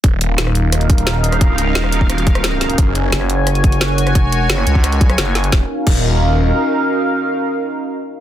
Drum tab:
CC |----------------|----------------|----------------|----------------|
HH |x-x-x-x-xxxxx-xx|x-x-x-x-xxxxx-xx|x-x-x-x-xxxxx-xx|x-x-x-x-xxxxx-xx|
SD |----or--r---o--r|----or--r--ro-o-|----or--r---o--r|----or--r--ro-o-|
BD |o---------o-----|o------o--o-----|o---------o-----|o------o--o-----|

CC |----x-----------|----------------|
HH |----------------|----------------|
SD |o---------------|----------------|
BD |o---o-----------|----------------|